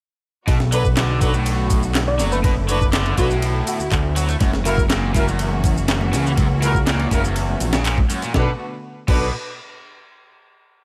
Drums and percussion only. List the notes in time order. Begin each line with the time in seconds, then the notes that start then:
0.48 kick, ride, shaker
0.60 snare
0.72 ride, shaker
0.85 kick, shaker
0.97 snare, clap, ride, shaker
1.21 kick, ride, shaker
1.34 shaker
1.46 ride, shaker
1.70 kick, ride, shaker
1.83 shaker
1.95 snare, clap, ride, shaker
2.19 snare, ride, shaker
2.32 shaker
2.44 kick, ride, shaker
2.69 ride, shaker
2.81 kick, shaker
2.93 snare, clap, ride, shaker
3.06 ride
3.18 kick, ride, shaker
3.31 shaker
3.42 ride, shaker
3.67 ride, shaker
3.80 shaker
3.92 kick, clap, ride, shaker
4.16 ride, shaker
4.29 ride, shaker
4.40 kick, ride, high conga, shaker
4.53 snare
4.65 ride, shaker
4.78 kick, high conga, shaker
4.90 snare, clap, ride, shaker
5.14 kick, ride, high conga, shaker
5.28 shaker
5.39 ride, shaker
5.51 high conga
5.64 kick, ride, shaker
5.77 shaker
5.88 snare, clap, ride, shaker
6.01 high conga, low conga
6.13 snare, ride, shaker
6.26 shaker
6.37 kick, ride, high conga, shaker
6.62 ride, shaker
6.75 kick, high conga, shaker
6.87 snare, clap, ride, shaker
7.00 ride
7.11 kick, ride, high conga, shaker
7.25 ride, shaker
7.36 ride, shaker
7.49 high conga
7.60 ride, shaker
7.73 snare, low conga, shaker
7.85 clap, ride, shaker
7.98 kick, high conga
8.10 ride, shaker
8.22 ride, shaker
8.34 kick, snare
9.08 kick, crash